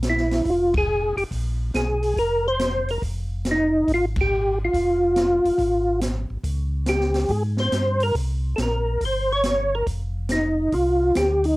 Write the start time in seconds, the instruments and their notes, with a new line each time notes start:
Already playing: tonewheel organ A#1
0.03 snare, closed hi-hat
0.10 tonewheel organ E4
0.17 snare
0.31 snare, open hi-hat
0.45 tonewheel organ F1, kick, open hi-hat
0.50 tonewheel organ F4
0.74 tonewheel organ G#4, kick, ride
1.17 tonewheel organ F1 G4, open hi-hat
1.31 tonewheel organ A#1, kick, open hi-hat
1.74 tonewheel organ B1 G#4, snare, closed hi-hat
2.03 open hi-hat
2.16 tonewheel organ F1 A#4, kick, open hi-hat
2.48 tonewheel organ C5
2.59 snare, closed hi-hat
2.88 tonewheel organ A#4, open hi-hat
3.02 tonewheel organ F1, kick, open hi-hat
3.45 snare, closed hi-hat
3.51 tonewheel organ D#4
3.88 tonewheel organ G#1, kick, open hi-hat
3.94 tonewheel organ F4
4.16 kick, ride
4.21 tonewheel organ G4
4.64 tonewheel organ F4
4.73 tonewheel organ F1, kick, open hi-hat
5.16 snare, closed hi-hat
5.45 tonewheel organ F1, open hi-hat
5.58 tonewheel organ G#1, kick, open hi-hat
6.01 snare, closed hi-hat
6.30 tonewheel organ G#1
6.43 tonewheel organ C#2, kick, open hi-hat
6.86 tonewheel organ G4, snare, closed hi-hat
7.00 snare
7.14 snare, open hi-hat
7.29 tonewheel organ G#2 G#4, kick, open hi-hat
7.57 tonewheel organ C5, snare
7.72 tonewheel organ G2, snare, closed hi-hat
8.00 tonewheel organ A#4, open hi-hat
8.15 tonewheel organ C2, kick, open hi-hat
8.56 tonewheel organ A#1 A4, snare, closed hi-hat
8.62 tonewheel organ A#4
9.01 tonewheel organ G1, kick, open hi-hat
9.05 tonewheel organ C5
9.33 tonewheel organ C#5
9.44 snare, closed hi-hat
9.75 tonewheel organ A#4
9.87 tonewheel organ F1, kick, open hi-hat
10.29 tonewheel organ D#4, snare, closed hi-hat
10.72 tonewheel organ C2 F4, kick, open hi-hat
11.15 tonewheel organ D2 G4, snare, closed hi-hat
11.44 tonewheel organ D#4, open hi-hat